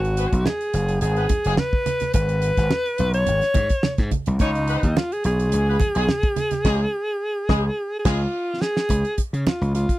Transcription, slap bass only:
0.00 0.25 G#1 loud
0.33 0.44 B1 medium
0.74 0.97 F#1 medium
1.02 1.26 G#1 medium
1.45 1.56 F#1 medium
2.15 2.51 G#1 loud
2.58 2.69 G#1 medium
3.00 3.23 B1 medium
3.28 3.40 G#1 medium
3.55 3.68 G#2 medium
3.99 4.10 G#2 medium
4.27 4.38 C2 medium
4.40 4.76 C#2 loud
4.83 4.94 D#2 medium
5.25 5.48 B1 medium
5.53 5.76 C#2 loud
5.96 6.07 B1 medium
6.65 6.84 C#2 loud
7.49 7.69 C#2 loud
8.05 8.25 C#2 loud
8.90 9.02 C#2 medium
9.18 muted slap bass stroke soft
9.33 9.44 C#3 medium
9.46 muted slap bass stroke soft
9.61 9.85 C#2 medium

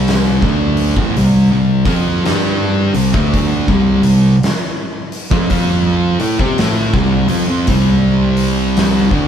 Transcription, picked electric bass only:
0.00 0.38 C2 loud
0.42 0.93 D2 medium
0.96 1.15 A1 loud
1.17 1.49 C2 medium
1.51 1.83 C2 medium
1.85 2.22 F2 medium
2.26 2.90 G2 medium
2.94 3.12 C2 medium
3.14 3.64 D2 loud
3.68 4.00 C2 loud
4.03 4.40 C2 medium
5.31 5.49 F2 medium
5.51 6.15 F2 medium
6.21 6.39 A2 loud
6.40 6.58 C3 loud
6.59 6.91 A2 loud
6.93 7.25 C2 loud
7.29 7.47 F2 loud
7.49 7.67 F2 loud
7.68 9.06 C2 loud
9.11 9.28 D2 medium

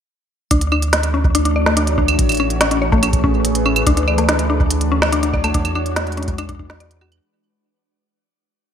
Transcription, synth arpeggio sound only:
0.51 0.61 D4 medium
0.72 0.81 D4 medium
1.14 1.23 C#4 medium
1.35 1.40 D4 loud
1.45 1.54 D4 medium
1.56 1.65 D5 medium
1.66 1.76 A3 loud
1.77 1.87 D4 medium
1.98 2.07 D4 medium
2.40 2.49 C#4 medium
2.61 2.66 C#4 loud
2.71 2.80 C#4 medium
2.82 2.91 C#5 medium
2.92 3.02 A3 loud
3.03 3.13 C#4 medium
3.24 3.33 C#4 medium
3.66 3.74 C#4 medium
3.87 3.92 D4 loud
3.97 4.06 D4 medium
4.08 4.16 D5 medium
4.18 4.28 A3 medium
4.29 4.39 D4 medium
4.50 4.58 D4 medium
4.92 5.00 C#4 medium
5.13 5.18 D4 medium
5.23 5.32 D4 medium
5.34 5.42 D5 medium
5.44 5.54 A3 medium
5.55 5.64 D4 medium
5.75 5.84 D4 medium
6.17 6.26 C#4 medium
6.38 6.44 D4 loud
6.49 6.58 D4 medium
6.59 6.69 D4 medium
6.70 6.79 D4 medium
6.80 6.89 D5 medium
7.01 7.11 F#4 loud

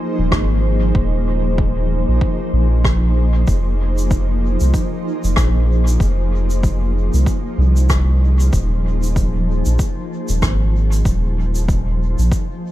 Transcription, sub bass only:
0.18 0.30 D#1 medium
0.32 0.92 G#1 loud
0.95 2.05 D#1 loud
2.08 2.20 A#1 medium
2.53 3.45 A#1 loud
3.48 4.57 F1 loud
4.61 4.72 C2 medium
5.24 5.36 F1 medium
5.37 5.98 A#1 loud
6.00 7.10 F1 medium
7.14 7.25 C2 medium
7.58 8.50 C2 medium
8.53 9.62 D#1 medium
9.66 9.78 A#1 medium
10.29 10.41 D#1 medium
10.42 11.03 G#1 loud
11.05 12.15 D#1 medium
12.19 12.30 A#1 medium

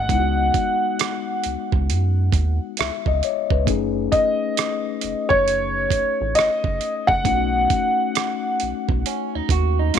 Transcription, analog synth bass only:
0.10 0.51 C#2 medium
1.46 1.57 C#2 soft
1.73 1.92 C#2 medium
1.90 2.31 F#2 medium
2.33 2.59 D#2 medium
2.80 2.91 C#2 soft
3.07 3.22 C#2 medium
3.51 3.66 C#2 medium
3.68 4.09 F#1 medium
5.04 5.15 F#1 soft
5.31 5.88 F#1 medium
5.91 6.03 A1 soft
6.21 6.35 A1 medium
6.38 6.49 F#1 soft
6.65 6.80 F#1 medium
7.09 7.24 F#1 medium
7.26 7.67 B1 medium
8.62 8.73 B1 soft
8.89 9.04 B1 medium
9.35 9.41 D#2 soft
9.50 9.91 D#2 medium

